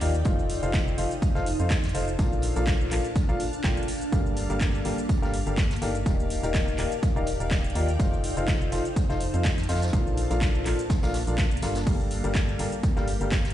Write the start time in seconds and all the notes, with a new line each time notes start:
Already playing: D#4 D5 F5 G5
0.01 D#2 F3 D#4 G4 A#4 D5 F5, open hi-hat, tambourine
0.14 closed hi-hat, shaker
0.25 F1 F3 D#4 F4 A4 C5 F5, kick, closed hi-hat, tambourine, shaker
0.39 shaker
0.48 A5, open hi-hat, tambourine
0.63 F1 F3 D#4 F4 A4 C5 F5, closed hi-hat, shaker
0.74 kick, snare, clap, closed hi-hat, tambourine, shaker
0.87 C5, shaker
0.98 F1 F3 D#4 F4 A4 C5 F5, open hi-hat, tambourine
1.11 closed hi-hat, shaker
1.22 kick, closed hi-hat, tambourine, shaker
1.35 F1 F3 D#4 F4 A4 C5 F5, snare, shaker
1.46 open hi-hat, tambourine
1.59 F2 F3 D#4 F4 A4 C5 F5, closed hi-hat, shaker
1.70 kick, snare, clap, closed hi-hat, tambourine, shaker
1.83 snare, closed hi-hat, shaker
1.89 closed hi-hat
1.95 F1 D#4 F4 A4 C5 F5, open hi-hat, tambourine
2.08 closed hi-hat, shaker
2.19 A#1 A#2 D4 F4 A4 A#4 F5, kick, closed hi-hat, tambourine, shaker
2.33 shaker
2.42 open hi-hat, tambourine
2.56 A#1 A#2 D4 F4 A4 A#4 F5, closed hi-hat, shaker
2.67 kick, snare, clap, closed hi-hat, tambourine, shaker
2.81 A#3, shaker
2.91 A#1 A#2 D4 F4 A4 A#4 F5, clap, open hi-hat, tambourine
3.05 closed hi-hat, shaker
3.16 kick, closed hi-hat, tambourine, shaker
3.29 A#1 A#2 D4 F4 A4 A#4 F5, shaker
3.40 open hi-hat, tambourine
3.53 closed hi-hat, shaker
3.64 A#1 A#2 D4 F4 A4 A#4 G5, kick, snare, clap, closed hi-hat, tambourine, shaker
3.77 closed hi-hat, shaker
3.83 closed hi-hat
3.88 open hi-hat, tambourine
4.01 closed hi-hat, shaker
4.12 G1 G3 D4 G4 A4 A#4 F5, kick, closed hi-hat, tambourine, shaker
4.26 shaker
4.37 open hi-hat, tambourine
4.50 G1 G3 D4 G4 A4 A#4 F5, closed hi-hat, shaker
4.61 kick, snare, clap, closed hi-hat, tambourine, shaker
4.75 shaker
4.85 G1 G3 D4 G4 A4 A#4 F5, open hi-hat, tambourine
4.98 closed hi-hat, shaker
5.09 kick, closed hi-hat, tambourine, shaker
5.22 G1 G3 D4 G4 A4 A#4 F5, snare, shaker
5.34 open hi-hat, tambourine
5.47 G1 G3 D4 G4 A4 A#4 F5, closed hi-hat, shaker
5.58 kick, snare, clap, closed hi-hat, tambourine, shaker
5.71 snare, closed hi-hat, shaker
5.76 closed hi-hat
5.82 G1 D#3 D4 G4 A4 A#4 F5, open hi-hat, tambourine
5.95 closed hi-hat, shaker
6.06 D#1 D#3 D#4 G4 A#4 D5 F5, kick, closed hi-hat, tambourine, shaker
6.20 shaker
6.26 D5
6.30 open hi-hat, tambourine
6.43 D#1 D#3 D#4 G4 A#4 D5 F5, closed hi-hat, shaker
6.54 kick, snare, clap, closed hi-hat, tambourine, shaker
6.68 shaker
6.78 D#1 D#3 D#4 G4 A#4 D5 F5, clap, open hi-hat, tambourine
6.92 G5, closed hi-hat, shaker
7.03 kick, closed hi-hat, tambourine, shaker
7.16 D#1 D#3 D#4 G4 A#4 D5 F5, shaker
7.27 open hi-hat, tambourine
7.40 D#1 D#3 D#4 G4 A#4 D5 F5, closed hi-hat, shaker
7.51 kick, snare, clap, closed hi-hat, tambourine, shaker
7.64 closed hi-hat, shaker
7.70 closed hi-hat
7.75 D#2 F3 D#4 G4 A#4 D5 F5, open hi-hat, tambourine
7.89 closed hi-hat, shaker
8.00 F1 F3 D#4 F4 A4 C5 F5, kick, closed hi-hat, tambourine, shaker
8.11 C5, shaker
8.24 open hi-hat, tambourine
8.37 F1 F3 D#4 F4 A4 C5 F5 A5, closed hi-hat, shaker
8.48 kick, snare, clap, closed hi-hat, tambourine, shaker
8.62 shaker
8.72 F1 F3 D#4 F4 A4 C5 F5, open hi-hat, tambourine
8.85 closed hi-hat, shaker
8.96 kick, closed hi-hat, tambourine, shaker
9.10 F1 F3 D#4 F4 A4 C5 F5, snare, shaker
9.20 open hi-hat, tambourine
9.34 F2 F3 D#4 F4 A4 C5 F5, closed hi-hat, shaker
9.44 kick, snare, clap, closed hi-hat, tambourine, shaker
9.58 snare, closed hi-hat, shaker
9.63 closed hi-hat
9.69 F2 D#4 F4 A4 C5 F5, snare, open hi-hat, tambourine
9.75 snare, tambourine
9.82 snare, closed hi-hat, tambourine, shaker
9.88 snare, tambourine
9.93 A#1 A#2 D4 F4 A4 A#4 F5, kick, closed hi-hat, tambourine, shaker
10.07 shaker
10.17 open hi-hat, tambourine
10.30 A#1 A#2 D4 F4 A4 A#4 F5, closed hi-hat, shaker
10.41 A#3, kick, snare, clap, closed hi-hat, tambourine, shaker
10.55 shaker
10.66 A#1 A#2 D4 F4 A4 A#4 F5, clap, open hi-hat, tambourine
10.79 closed hi-hat, shaker
10.90 kick, snare, closed hi-hat, tambourine, shaker
11.03 A#1 A#2 D4 F4 A4 A#4 F5, snare, tambourine, shaker
11.14 snare, open hi-hat, tambourine
11.27 A#1 A#2 D4 F4 A4 A#4 F5, closed hi-hat, shaker
11.38 kick, snare, clap, closed hi-hat, tambourine, shaker
11.51 closed hi-hat, shaker
11.57 closed hi-hat
11.62 G1 G3 D4 F4 A4 A#4 F5, snare, open hi-hat, tambourine
11.75 snare, closed hi-hat, tambourine, shaker
11.87 G1 G3 D4 G4 A4 A#4 F5, kick, closed hi-hat, crash, tambourine, shaker
12.00 shaker
12.11 open hi-hat, tambourine
12.24 G1 G3 D4 G4 A4 A#4 F5, closed hi-hat, shaker
12.35 kick, snare, clap, closed hi-hat, tambourine, shaker
12.49 shaker
12.59 G1 G3 D4 G4 A4 A#4 F5, open hi-hat, tambourine
12.72 closed hi-hat, shaker
12.83 kick, closed hi-hat, tambourine, shaker
12.96 G1 G3 D4 G4 A4 A#4 F5, snare, shaker
13.08 open hi-hat, tambourine
13.21 G1 G3 D4 G4 A4 A#4 F5, closed hi-hat, shaker
13.32 kick, snare, clap, closed hi-hat, tambourine, shaker
13.45 snare, closed hi-hat, shaker
13.50 closed hi-hat